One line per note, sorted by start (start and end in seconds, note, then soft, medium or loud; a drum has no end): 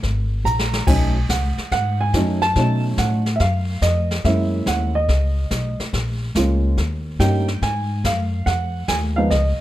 0.03 0.44 G#1 medium
0.03 brush sweep soft
0.03 kick soft
0.03 snare soft
0.45 0.86 A#1 medium
0.45 0.89 A#5 medium
0.45 hi-hat pedal soft
0.59 snare medium
0.73 snare medium
0.87 1.28 B1 medium
0.87 1.12 F#3 soft
0.87 1.13 A3 soft
0.87 1.13 C#4 medium
0.87 1.13 D#4 medium
0.87 1.26 G#5 medium
0.87 brush sweep soft
0.87 kick medium
0.87 snare soft
0.87 crash medium
1.29 1.56 C#2 medium
1.29 1.69 F#5 medium
1.29 kick soft
1.29 snare medium
1.29 hi-hat pedal soft
1.57 muted upright bass stroke soft
1.57 snare soft
1.71 2.12 G#2 medium
1.71 2.01 F#5 medium
1.71 brush sweep soft
1.71 kick soft
1.71 snare soft
2.01 2.39 G#5 medium
2.13 2.54 F#2 medium
2.13 2.39 F#3 soft
2.13 2.40 A3 soft
2.13 2.40 C#4 soft
2.13 2.40 D#4 medium
2.13 kick soft
2.13 snare soft
2.13 hi-hat pedal soft
2.42 2.81 A5 loud
2.42 snare soft
2.55 2.97 B2 medium
2.55 3.21 F#3 medium
2.55 3.21 A3 soft
2.55 3.21 C#4 medium
2.55 3.21 D#4 medium
2.55 brush sweep soft
2.55 kick soft
2.55 snare soft
2.98 3.39 A2 medium
2.98 3.37 F#5 medium
2.98 kick soft
2.98 snare medium
2.98 hi-hat pedal soft
3.26 snare soft
3.36 3.40 E5 medium
3.36 brush sweep soft
3.36 snare soft
3.40 3.81 F#2 medium
3.40 3.80 F5 medium
3.40 kick soft
3.82 4.23 F2 medium
3.82 4.22 D#5 medium
3.82 kick soft
3.82 snare medium
3.82 hi-hat pedal soft
4.11 snare soft
4.24 4.65 F#2 medium
4.24 4.89 G#3 medium
4.24 4.89 A#3 soft
4.24 4.90 C#4 soft
4.24 4.90 E4 medium
4.24 4.64 E5 medium
4.24 brush sweep soft
4.24 kick soft
4.24 snare soft
4.66 5.07 D#2 medium
4.66 4.94 F#5 medium
4.66 kick soft
4.66 snare medium
4.66 hi-hat pedal medium
4.95 5.75 D#5 medium
5.08 5.50 C#2 medium
5.08 brush sweep soft
5.08 kick soft
5.08 snare soft
5.51 5.77 B1 medium
5.51 kick soft
5.51 snare soft
5.51 hi-hat pedal soft
5.79 muted upright bass stroke soft
5.79 snare soft
5.93 6.34 A#1 medium
5.93 brush sweep soft
5.93 kick soft
5.93 snare soft
6.35 6.76 C#2 medium
6.35 6.78 G#3 soft
6.35 6.78 A#3 soft
6.35 6.78 C#4 soft
6.35 6.78 F4 medium
6.35 kick soft
6.35 snare soft
6.35 hi-hat pedal medium
6.77 7.18 D#2 medium
6.77 brush sweep soft
6.77 kick soft
6.77 snare soft
7.19 7.60 G2 medium
7.19 7.45 G3 medium
7.19 7.45 A#3 soft
7.19 7.45 C#4 soft
7.19 7.46 D#4 medium
7.19 7.59 G5 medium
7.19 kick soft
7.19 snare soft
7.19 hi-hat pedal soft
7.48 snare soft
7.62 8.03 G#2 medium
7.62 8.06 G#5 medium
7.62 brush sweep soft
7.62 kick soft
7.62 snare soft
8.04 8.45 F#2 medium
8.04 8.44 F5 medium
8.04 kick soft
8.04 snare medium
8.04 hi-hat pedal soft
8.46 8.87 F2 medium
8.46 8.86 F#5 medium
8.46 brush sweep soft
8.46 kick soft
8.46 snare soft
8.88 9.29 D#2 medium
8.88 8.95 G#5 loud
8.88 kick soft
8.88 snare soft
8.88 hi-hat pedal soft
9.16 9.29 F3 medium
9.16 9.30 G#3 soft
9.16 9.30 B3 medium
9.16 9.30 D#4 medium
9.16 9.31 F5 medium
9.30 9.57 C#2 medium
9.30 9.61 D#5 medium
9.30 brush sweep soft
9.30 kick soft
9.30 snare soft